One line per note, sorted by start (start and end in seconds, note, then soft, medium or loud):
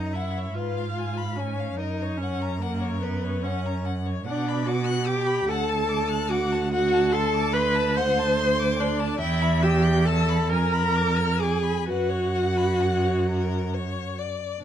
0.00 0.52 F#2 medium
0.00 0.15 D#4 medium
0.00 0.16 D#5 medium
0.00 0.17 A#5 medium
0.13 0.56 E4 medium
0.13 0.59 E5 medium
0.13 0.39 F#5 medium
0.37 0.56 C#5 medium
0.54 1.75 G#2 medium
0.54 1.38 F4 medium
0.54 0.78 B4 medium
0.54 1.39 F5 medium
0.77 1.00 F5 medium
0.98 1.18 G#5 medium
1.17 1.41 B5 medium
1.36 1.78 C#4 medium
1.36 1.80 C#5 medium
1.36 1.61 G#5 medium
1.59 1.78 F5 medium
1.76 4.27 F#2 medium
1.76 2.19 D#4 medium
1.76 2.03 A#4 medium
1.76 2.22 D#5 medium
2.02 2.24 C#5 medium
2.17 2.60 C#4 medium
2.17 2.61 C#5 medium
2.23 2.43 F#5 medium
2.42 2.63 A#5 medium
2.59 3.00 A#3 medium
2.59 3.05 A#4 medium
2.59 2.83 F#5 medium
2.81 3.04 C#5 medium
3.01 3.44 B3 medium
3.01 3.25 A#4 medium
3.01 3.48 B4 medium
3.24 3.45 C#5 medium
3.43 3.85 C#4 medium
3.43 3.86 C#5 medium
3.43 3.67 F#5 medium
3.66 3.86 A#5 medium
3.85 4.07 F#5 medium
4.05 4.25 C#5 medium
4.25 5.46 B2 medium
4.25 4.67 D4 loud
4.25 4.50 F#5 medium
4.29 4.70 D5 medium
4.48 4.68 B5 medium
4.65 5.07 F#4 loud
4.65 5.09 F#5 loud
4.65 4.87 D6 medium
4.86 5.08 F#6 medium
5.06 5.50 G4 loud
5.06 5.52 G5 loud
5.06 5.28 D6 medium
5.26 5.47 B5 medium
5.47 9.16 D2 medium
5.47 6.30 A4 loud
5.47 5.70 F#5 medium
5.47 6.32 A5 loud
5.69 5.90 A5 medium
5.88 6.10 D6 medium
6.09 6.31 F#6 medium
6.28 6.70 F#4 loud
6.28 6.72 F#5 loud
6.28 6.53 D6 medium
6.52 6.71 A5 medium
6.71 7.15 F#4 loud
6.71 6.95 F#5 medium
6.71 7.16 F#5 loud
6.93 7.13 A5 medium
7.12 7.55 A4 loud
7.12 7.54 A5 loud
7.12 7.35 C6 medium
7.33 7.57 D6 medium
7.53 7.98 B4 loud
7.53 7.99 B5 loud
7.53 7.77 C6 medium
7.75 7.98 A5 medium
7.96 8.81 C5 loud
7.96 8.20 F#5 medium
7.96 8.78 C6 loud
8.18 8.41 A5 medium
8.40 8.60 C6 medium
8.59 8.81 D6 medium
8.78 9.19 D4 loud
8.78 9.21 D5 loud
8.78 9.01 C6 medium
8.99 9.19 A5 medium
9.19 10.52 E2 loud
9.19 9.64 E4 loud
9.19 9.66 E5 loud
9.19 9.43 G5 medium
9.42 9.64 B5 medium
9.62 10.07 G4 loud
9.62 10.08 G5 loud
9.62 9.86 E6 medium
9.84 10.10 G6 medium
10.05 10.51 A4 loud
10.05 10.51 A5 loud
10.05 10.30 E6 medium
10.29 10.50 B5 medium
10.50 11.88 F2 medium
10.50 11.41 A#4 loud
10.50 10.74 G#5 medium
10.50 11.44 A#5 loud
10.73 10.97 B5 medium
10.95 11.18 D6 medium
11.17 11.41 F6 medium
11.39 11.88 G#4 loud
11.39 11.90 G#5 loud
11.39 11.64 D6 medium
11.62 11.87 B5 medium
11.86 14.40 F#2 medium
11.86 14.17 F#4 loud
11.86 12.11 B4 medium
11.86 14.19 F#5 loud
12.09 12.36 C#5 medium
12.35 12.58 F#5 medium
12.57 12.82 B5 medium
12.80 13.05 F#5 medium
13.03 13.27 C#5 medium
13.28 13.75 A#4 medium
13.74 14.20 C#5 medium
14.18 14.61 D5 medium
14.59 14.64 D4 medium